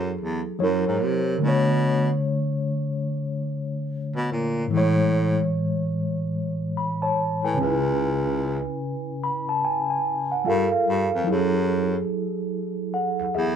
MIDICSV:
0, 0, Header, 1, 3, 480
1, 0, Start_track
1, 0, Key_signature, 3, "minor"
1, 0, Tempo, 821918
1, 833, Time_signature, 4, 2, 24, 8
1, 7918, End_track
2, 0, Start_track
2, 0, Title_t, "Tine electric piano"
2, 0, Program_c, 0, 4
2, 0, Control_c, 0, 64, 127
2, 0, Note_on_c, 0, 54, 74
2, 0, Note_on_c, 0, 64, 64
2, 0, Note_on_c, 0, 68, 65
2, 0, Note_on_c, 0, 69, 78
2, 318, Note_off_c, 0, 54, 0
2, 327, Note_off_c, 0, 64, 0
2, 337, Note_off_c, 0, 68, 0
2, 344, Note_on_c, 0, 54, 73
2, 347, Note_off_c, 0, 69, 0
2, 351, Note_on_c, 0, 73, 67
2, 362, Control_c, 0, 64, 0
2, 362, Note_on_c, 0, 64, 63
2, 371, Note_on_c, 0, 70, 73
2, 474, Control_c, 0, 64, 127
2, 808, Note_on_c, 0, 50, 72
2, 826, Note_on_c, 0, 57, 67
2, 829, Note_off_c, 0, 54, 0
2, 832, Note_off_c, 0, 73, 0
2, 838, Note_off_c, 0, 64, 0
2, 841, Control_c, 0, 64, 0
2, 842, Note_off_c, 0, 70, 0
2, 847, Note_on_c, 0, 62, 70
2, 867, Note_on_c, 0, 73, 82
2, 931, Control_c, 0, 64, 127
2, 2717, Note_off_c, 0, 50, 0
2, 2726, Note_off_c, 0, 57, 0
2, 2728, Note_on_c, 0, 45, 72
2, 2737, Note_off_c, 0, 62, 0
2, 2747, Note_off_c, 0, 73, 0
2, 2750, Note_on_c, 0, 52, 70
2, 2760, Control_c, 0, 64, 0
2, 2770, Note_on_c, 0, 56, 66
2, 2788, Note_on_c, 0, 73, 83
2, 2849, Control_c, 0, 64, 127
2, 3947, Note_off_c, 0, 73, 0
2, 3955, Note_on_c, 0, 83, 62
2, 4096, Note_off_c, 0, 83, 0
2, 4101, Note_on_c, 0, 81, 62
2, 4106, Note_on_c, 0, 73, 56
2, 4330, Note_off_c, 0, 81, 0
2, 4332, Note_off_c, 0, 73, 0
2, 4349, Note_on_c, 0, 80, 64
2, 4353, Note_on_c, 0, 71, 52
2, 4398, Note_off_c, 0, 45, 0
2, 4405, Note_on_c, 0, 49, 69
2, 4408, Note_off_c, 0, 52, 0
2, 4418, Note_off_c, 0, 56, 0
2, 4424, Note_on_c, 0, 61, 63
2, 4442, Control_c, 0, 64, 0
2, 4444, Note_on_c, 0, 62, 48
2, 4456, Note_off_c, 0, 71, 0
2, 4463, Note_on_c, 0, 71, 75
2, 4482, Note_on_c, 0, 64, 64
2, 4486, Note_off_c, 0, 62, 0
2, 4534, Control_c, 0, 64, 127
2, 4574, Note_off_c, 0, 80, 0
2, 5393, Note_on_c, 0, 83, 71
2, 5532, Note_off_c, 0, 83, 0
2, 5542, Note_on_c, 0, 81, 64
2, 5627, Note_off_c, 0, 81, 0
2, 5633, Note_on_c, 0, 80, 67
2, 5772, Note_off_c, 0, 80, 0
2, 5782, Note_on_c, 0, 80, 62
2, 6006, Note_off_c, 0, 80, 0
2, 6025, Note_on_c, 0, 78, 58
2, 6076, Note_off_c, 0, 49, 0
2, 6085, Note_off_c, 0, 61, 0
2, 6099, Note_on_c, 0, 55, 69
2, 6105, Note_off_c, 0, 71, 0
2, 6108, Note_off_c, 0, 78, 0
2, 6109, Note_on_c, 0, 65, 59
2, 6115, Note_off_c, 0, 64, 0
2, 6115, Note_on_c, 0, 77, 65
2, 6118, Note_on_c, 0, 69, 64
2, 6121, Control_c, 0, 64, 0
2, 6128, Note_on_c, 0, 70, 78
2, 6213, Control_c, 0, 64, 127
2, 6253, Note_off_c, 0, 77, 0
2, 6260, Note_on_c, 0, 77, 66
2, 6564, Note_on_c, 0, 54, 74
2, 6569, Note_off_c, 0, 77, 0
2, 6582, Note_on_c, 0, 64, 65
2, 6586, Note_off_c, 0, 55, 0
2, 6591, Note_off_c, 0, 65, 0
2, 6596, Note_off_c, 0, 69, 0
2, 6601, Note_off_c, 0, 70, 0
2, 6602, Control_c, 0, 64, 0
2, 6602, Note_on_c, 0, 68, 65
2, 6620, Note_on_c, 0, 69, 81
2, 6707, Control_c, 0, 64, 127
2, 7529, Note_off_c, 0, 64, 0
2, 7539, Note_off_c, 0, 68, 0
2, 7548, Note_off_c, 0, 69, 0
2, 7556, Note_on_c, 0, 78, 61
2, 7558, Note_on_c, 0, 69, 50
2, 7783, Note_off_c, 0, 78, 0
2, 7784, Note_off_c, 0, 69, 0
2, 7796, Note_on_c, 0, 76, 66
2, 7798, Note_on_c, 0, 68, 58
2, 7918, Note_off_c, 0, 54, 0
2, 7918, Note_off_c, 0, 68, 0
2, 7918, Note_off_c, 0, 76, 0
2, 7918, End_track
3, 0, Start_track
3, 0, Title_t, "Baritone saxophone"
3, 0, Program_c, 1, 67
3, 0, Note_on_c, 1, 42, 88
3, 74, Note_off_c, 1, 42, 0
3, 123, Note_on_c, 1, 40, 79
3, 241, Note_off_c, 1, 40, 0
3, 363, Note_on_c, 1, 42, 90
3, 480, Note_off_c, 1, 42, 0
3, 510, Note_on_c, 1, 44, 78
3, 602, Note_on_c, 1, 48, 87
3, 610, Note_off_c, 1, 44, 0
3, 793, Note_off_c, 1, 48, 0
3, 838, Note_on_c, 1, 47, 96
3, 1226, Note_off_c, 1, 47, 0
3, 2430, Note_on_c, 1, 47, 91
3, 2501, Note_off_c, 1, 47, 0
3, 2523, Note_on_c, 1, 46, 76
3, 2714, Note_off_c, 1, 46, 0
3, 2762, Note_on_c, 1, 45, 102
3, 3149, Note_off_c, 1, 45, 0
3, 4348, Note_on_c, 1, 45, 77
3, 4420, Note_off_c, 1, 45, 0
3, 4439, Note_on_c, 1, 37, 94
3, 5022, Note_off_c, 1, 37, 0
3, 6120, Note_on_c, 1, 43, 87
3, 6239, Note_off_c, 1, 43, 0
3, 6359, Note_on_c, 1, 43, 79
3, 6478, Note_off_c, 1, 43, 0
3, 6509, Note_on_c, 1, 41, 79
3, 6580, Note_off_c, 1, 41, 0
3, 6601, Note_on_c, 1, 42, 95
3, 6988, Note_off_c, 1, 42, 0
3, 7712, Note_on_c, 1, 40, 44
3, 7746, Note_off_c, 1, 40, 0
3, 7801, Note_on_c, 1, 40, 82
3, 7918, Note_off_c, 1, 40, 0
3, 7918, End_track
0, 0, End_of_file